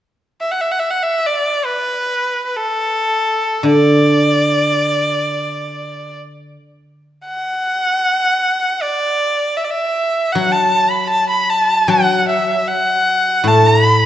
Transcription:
0.41 E5
0.51 F#5
0.60 E5
0.71 F#5
0.79 E5
0.90 F#5
1.03 E5
1.27 D5
1.65 B4
2.45 B4
2.56 A4
3.63 D3 D5
7.26 F#5
8.82 D5
9.57 E5
9.64 D5
9.71 E5
10.32 F#3 F#5
10.52 A5
10.91 B5
11.07 A5
11.30 B5
11.49 A5
11.88 F#3 F#5
12.29 E5
12.68 F#5
13.44 A2 A5
13.67 B5

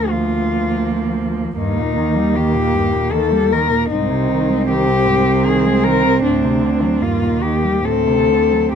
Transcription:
Already playing: D2 A#4
0.09 F3 A#3 F4
1.57 D#2 G2 A#3 D#4
1.78 A#2
1.97 D#3
2.16 G3
2.36 D#3 G4
2.55 A#2
2.75 G2
2.93 A#2
3.12 D#3 A4
3.31 G3
3.52 D#3 A#4
3.71 A#2
3.90 C2 G#2 C4 D#4
4.11 C3
4.29 D#3
4.49 G#3
4.68 D#3 G4
4.87 C3
5.07 G#2
5.26 C3
5.46 D#3 G#4
5.66 G#3
5.84 D#3 A#4
6.05 C3
6.24 D2 A2 D4
6.44 C3
6.63 D3
6.83 F#3
7.02 D#2 G2 A#3 F4
7.22 A#2
7.42 D#3 G4
7.64 G3
7.84 D2 A2 C4 A4
8.06 C3
8.29 D3
8.51 F#3

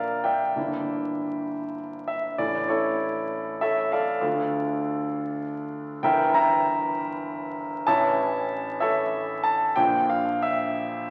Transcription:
Already playing: A#1 A#3 D4 F4 A#4 D5 E5 F5
0.24 D5 E5 G5
0.56 G1 A#3 D4 E4
2.08 E5
2.38 A1 A3 C#4 E4 D5
2.68 E4 A4 C#5
3.61 A4 C#5 E5
3.92 A4 D5 F5
4.21 D2 A3 D4 F4
6.03 G1 E3 E4 A#4 E5 G5
6.34 E5 G5 A#5
7.87 A1 E3 C#4 E4 C#5 E5 A5
8.80 A4 C#5 E5
9.43 A5
9.76 A#1 F3 A#3 D4 G5
10.09 F5
10.42 E5

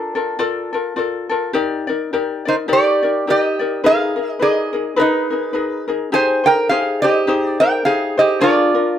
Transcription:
Already playing: D4 F4 A4 A#4 D5
0.15 F4 A4 A#4
0.39 F4 A4 A#4 D5
0.73 F4 A4 A#4
0.96 F4 A4 A#4 D5
1.29 F4 A4 A#4
1.53 D#4 G4 A#4 D5
1.87 D#4 A#4 D5
2.13 D#4 G4 A#4 D5
2.45 D#4 A#4 C5 D5
2.68 D#4 G4 A#4 D5
2.73 G4 D5
3.02 D#4 A#4 D5
3.27 D#4 G4 A#4 D5 D#5
3.59 D#4 A#4 D5
3.84 D#4 G#4 A#4 B4 F5
4.16 D#4 G#4 A#4
4.31 D#5
4.39 D#4 G#4 A#4 B4 D#5
4.73 D#4 G#4 A#4
4.96 D#4 G#4 A#4 B4
5.01 D#4
5.30 D#4 G#4 A#4
5.53 D#4 G#4 A#4 B4
5.88 D#4 G#4 A#4
6.12 D#4 G4 G#4 C5 G#5
6.44 D#4 G#4 A#4 C5 G5
6.69 D#4 G4 G#4 C5 F5
7.02 D#4 G4 G#4 C5 D#5
7.27 D#4 G4 G#4 C5
7.45 D5
7.60 D#4 G#4 A#4 C5 G5
7.85 D#4 G4 G#4 C5 F5
8.17 D#4 G4 G#4 C5 D#5
8.41 D4 F4 G#4 A#4 D5
8.74 D4 F4 A#4

